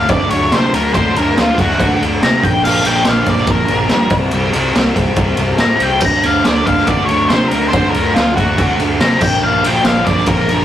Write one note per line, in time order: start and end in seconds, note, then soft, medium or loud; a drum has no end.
0.00 0.10 A3 medium
0.00 0.11 D4 medium
0.08 0.29 D2 loud
0.08 0.31 D3 loud
0.08 0.32 F#3 loud
0.08 0.32 A3 loud
0.08 0.33 D4 loud
0.08 0.30 D5 medium
0.08 kick loud
0.08 ride loud
0.30 0.51 D2 medium
0.30 0.50 D3 medium
0.30 0.52 F#3 loud
0.30 0.52 A3 loud
0.30 0.51 C#5 medium
0.30 ride medium
0.34 0.54 D4 loud
0.51 0.72 C3 loud
0.51 0.73 D3 loud
0.51 0.74 F#3 medium
0.51 0.75 A3 loud
0.51 0.76 D4 loud
0.51 0.73 C5 medium
0.51 snare loud
0.51 ride loud
0.74 0.94 D2 medium
0.74 0.95 D3 medium
0.74 0.96 F#3 medium
0.74 0.96 A3 medium
0.74 0.97 D4 loud
0.74 0.93 A#4 medium
0.74 ride medium
0.94 1.15 D2 loud
0.94 1.15 D3 medium
0.94 1.16 F#3 medium
0.94 1.17 A3 loud
0.94 1.15 C5 loud
0.94 kick loud
0.94 ride loud
0.98 1.19 D4 loud
1.16 1.35 D2 loud
1.16 1.35 D3 medium
1.16 1.37 F#3 medium
1.16 1.37 A3 loud
1.16 1.38 D4 loud
1.16 1.37 A#4 medium
1.16 ride medium
1.36 1.57 D2 medium
1.36 1.57 D3 medium
1.36 1.59 F#3 loud
1.36 1.60 A3 loud
1.36 1.61 D4 loud
1.36 snare loud
1.36 ride loud
1.40 1.59 F4 loud
1.58 1.78 D2 medium
1.58 1.80 D3 medium
1.58 1.80 F#3 medium
1.58 1.81 A3 medium
1.58 2.01 F#4 medium
1.58 kick medium
1.58 ride medium
1.62 1.82 D4 medium
1.70 snare soft
1.80 2.00 D2 loud
1.80 2.00 D3 medium
1.80 2.01 F#3 loud
1.80 2.01 A3 loud
1.80 2.02 D4 loud
1.80 kick loud
1.80 ride loud
2.01 2.21 D2 medium
2.01 2.20 D3 medium
2.01 2.21 F#3 loud
2.01 2.22 A3 medium
2.01 2.23 D4 loud
2.01 ride medium
2.21 2.45 C3 loud
2.21 2.41 D3 loud
2.21 2.42 F#3 loud
2.21 2.43 A3 loud
2.21 2.43 D4 loud
2.21 2.43 A#5 medium
2.21 snare loud
2.21 ride loud
2.42 2.64 A#1 loud
2.42 2.62 A#2 loud
2.42 2.63 D3 loud
2.42 2.63 F3 loud
2.42 2.64 A#3 loud
2.42 2.64 D4 loud
2.42 2.64 G5 loud
2.42 kick loud
2.42 ride medium
2.64 2.85 A#1 loud
2.64 2.84 A#2 loud
2.64 2.85 D3 loud
2.64 2.86 F3 loud
2.64 2.87 A#3 loud
2.64 2.87 D4 loud
2.64 2.85 F5 loud
2.64 crash loud
2.85 3.06 A#1 loud
2.85 3.06 A#2 medium
2.85 3.06 D3 medium
2.85 3.06 F3 loud
2.85 3.08 A#3 loud
2.85 3.09 D4 loud
2.85 3.07 G5 medium
2.85 ride medium
3.05 3.26 A#1 medium
3.05 3.26 A#2 loud
3.05 3.27 D3 loud
3.05 3.27 F3 loud
3.05 snare loud
3.05 ride loud
3.09 3.29 A#3 loud
3.09 3.28 D4 loud
3.09 3.29 F5 medium
3.26 3.46 A#1 medium
3.26 3.47 A#2 medium
3.26 3.49 D3 medium
3.26 3.49 F3 medium
3.26 3.50 A#3 medium
3.26 3.51 D4 medium
3.26 3.50 D5 loud
3.26 kick medium
3.26 ride medium
3.37 snare soft
3.47 3.68 A#1 loud
3.47 3.69 A#2 loud
3.47 3.69 D3 loud
3.47 3.70 F3 loud
3.47 4.12 A#4 loud
3.47 kick loud
3.47 ride loud
3.51 3.70 A#3 loud
3.51 3.70 D4 loud
3.68 3.90 A#1 medium
3.68 3.91 A#2 medium
3.68 3.92 D3 medium
3.68 3.92 F3 loud
3.68 3.93 A#3 loud
3.68 3.93 D4 loud
3.68 ride medium
3.89 4.12 G2 loud
3.89 4.12 A#2 loud
3.89 4.13 D3 loud
3.89 4.12 F3 loud
3.89 snare loud
3.89 ride loud
3.94 4.13 A#3 loud
3.94 4.13 D4 loud
4.10 4.32 C2 medium
4.10 kick loud
4.10 ride medium
4.15 4.33 C3 loud
4.15 4.33 G3 loud
4.15 4.33 C4 loud
4.15 4.34 E4 loud
4.31 4.54 C2 loud
4.31 4.55 C3 loud
4.31 4.56 G3 loud
4.31 4.56 C4 loud
4.31 4.56 E4 loud
4.31 ride loud
4.53 4.74 C2 loud
4.53 4.74 C3 loud
4.53 4.76 G3 medium
4.53 ride medium
4.57 4.75 C4 loud
4.57 4.76 E4 loud
4.75 4.95 C2 medium
4.75 4.96 C3 loud
4.75 4.96 G3 medium
4.75 4.97 C4 medium
4.75 4.97 E4 loud
4.75 snare loud
4.75 ride loud
4.96 5.16 C2 loud
4.96 5.17 C3 medium
4.96 5.18 G3 medium
4.96 5.18 C4 loud
4.96 5.18 E4 medium
4.96 kick medium
4.96 ride medium
5.16 5.37 C2 loud
5.16 5.38 C3 loud
5.16 5.40 G3 loud
5.16 5.39 C4 loud
5.16 5.40 E4 loud
5.16 kick loud
5.16 ride loud
5.37 5.59 C2 medium
5.37 5.59 C3 medium
5.37 5.61 C4 loud
5.37 ride medium
5.41 5.60 G3 loud
5.41 5.61 E4 loud
5.58 5.80 A2 medium
5.58 5.80 C3 loud
5.58 5.81 G3 loud
5.58 5.82 C4 loud
5.58 5.82 E4 loud
5.58 5.81 A#5 medium
5.58 snare loud
5.58 ride loud
5.80 6.02 C2 medium
5.80 6.02 C3 medium
5.80 6.02 G3 medium
5.80 6.03 C4 loud
5.80 6.03 E4 loud
5.80 6.04 G5 loud
5.80 ride medium
6.00 6.23 D2 loud
6.00 6.26 D3 medium
6.00 6.27 F#3 loud
6.00 kick loud
6.00 crash loud
6.05 6.28 A3 loud
6.05 6.29 D4 loud
6.05 6.25 A#5 loud
6.23 6.45 D2 loud
6.23 6.46 D3 medium
6.23 6.45 F5 medium
6.23 ride medium
6.28 6.47 F#3 medium
6.28 6.47 A3 medium
6.28 6.48 D4 medium
6.45 6.66 D2 loud
6.45 6.65 D3 loud
6.45 6.66 F#3 loud
6.45 6.68 A3 loud
6.45 6.69 D4 loud
6.45 6.67 D5 medium
6.45 snare loud
6.45 ride loud
6.66 6.87 D2 medium
6.66 6.86 D3 medium
6.66 6.87 F#3 medium
6.66 6.88 A3 loud
6.66 6.89 D4 medium
6.66 6.87 F5 loud
6.66 kick medium
6.66 ride medium
6.77 snare soft
6.87 7.08 D2 loud
6.87 7.08 D3 loud
6.87 7.09 F#3 loud
6.87 7.09 A3 loud
6.87 7.11 D4 loud
6.87 7.05 D5 medium
6.87 kick loud
6.87 ride loud
7.05 7.28 C#5 medium
7.05 ride medium
7.10 7.30 D2 medium
7.10 7.30 D3 medium
7.10 7.31 F#3 medium
7.10 7.32 A3 loud
7.10 7.33 D4 loud
7.28 7.51 C3 loud
7.28 7.52 D3 loud
7.28 7.48 C5 medium
7.28 snare loud
7.28 ride loud
7.32 7.53 F#3 loud
7.32 7.54 A3 loud
7.32 7.55 D4 loud
7.48 7.68 A#4 medium
7.48 ride medium
7.52 7.72 D2 medium
7.52 7.73 D3 medium
7.52 7.74 F#3 loud
7.52 7.73 A3 loud
7.52 7.75 D4 loud
7.68 7.90 C5 loud
7.73 7.93 D2 loud
7.73 7.95 D3 medium
7.73 7.96 F#3 medium
7.73 7.96 A3 loud
7.73 7.97 D4 loud
7.73 kick loud
7.73 ride loud
7.90 8.15 D2 loud
7.90 8.13 A#4 medium
7.90 ride medium
7.96 8.16 D3 medium
7.96 8.17 F#3 medium
7.96 8.17 A3 loud
7.96 8.19 D4 loud
8.14 8.36 D2 medium
8.14 8.36 D3 loud
8.14 8.35 F4 medium
8.14 snare loud
8.14 ride loud
8.18 8.36 F#3 loud
8.18 8.37 A3 loud
8.18 8.37 D4 loud
8.36 8.58 D2 loud
8.36 8.56 D3 medium
8.36 8.56 F#3 medium
8.36 8.57 A3 loud
8.36 8.57 D4 loud
8.36 8.78 F#4 medium
8.36 kick medium
8.36 ride medium
8.57 8.78 D2 loud
8.57 8.78 D3 loud
8.57 8.79 F#3 loud
8.57 8.79 A3 loud
8.57 8.80 D4 loud
8.57 kick loud
8.57 ride loud
8.79 8.99 D2 loud
8.79 9.01 D3 loud
8.79 9.01 F#3 medium
8.79 9.02 A3 loud
8.79 9.01 D4 loud
8.79 ride medium
8.99 9.20 C3 medium
8.99 9.21 D3 loud
8.99 9.21 F#3 loud
8.99 9.22 A3 loud
8.99 9.22 D4 loud
8.99 9.22 A#5 medium
8.99 snare loud
8.99 ride loud
9.21 9.42 A#1 medium
9.21 9.42 A#2 loud
9.21 9.43 D3 loud
9.21 9.44 F3 loud
9.21 9.45 A#3 loud
9.21 9.42 G5 medium
9.21 kick loud
9.21 crash loud
9.25 9.45 D4 loud
9.43 9.63 A#1 loud
9.43 9.65 A#2 loud
9.43 9.66 D3 loud
9.43 9.67 F3 loud
9.43 9.67 A#3 loud
9.43 9.68 D4 loud
9.43 9.64 F5 medium
9.64 9.85 A#1 loud
9.64 9.87 A#2 medium
9.64 9.87 D3 medium
9.64 9.88 F3 medium
9.64 9.86 G5 medium
9.64 ride medium
9.68 9.88 A#3 loud
9.68 9.89 D4 loud
9.84 10.05 A#1 medium
9.84 10.07 A#2 loud
9.84 10.06 F5 medium
9.84 snare loud
9.84 ride loud
9.89 10.08 D3 loud
9.89 10.09 F3 loud
9.89 10.09 A#3 loud
9.89 10.10 D4 loud
10.05 10.26 A#1 loud
10.05 10.29 A#2 medium
10.05 10.26 D5 loud
10.05 kick medium
10.05 ride medium
10.09 10.30 D3 medium
10.09 10.30 F3 loud
10.09 10.31 A#3 loud
10.09 10.30 D4 loud
10.17 snare soft
10.26 10.48 A#1 loud
10.26 10.49 A#2 loud
10.26 10.65 A#4 loud
10.26 kick loud
10.26 ride loud
10.31 10.50 D3 loud
10.31 10.51 F3 loud
10.31 10.52 A#3 loud
10.31 10.52 D4 loud
10.49 10.65 A#1 medium
10.49 10.65 A#2 loud
10.49 10.65 D3 medium
10.49 10.65 F3 medium
10.49 ride medium
10.53 10.65 A#3 medium
10.53 10.65 D4 loud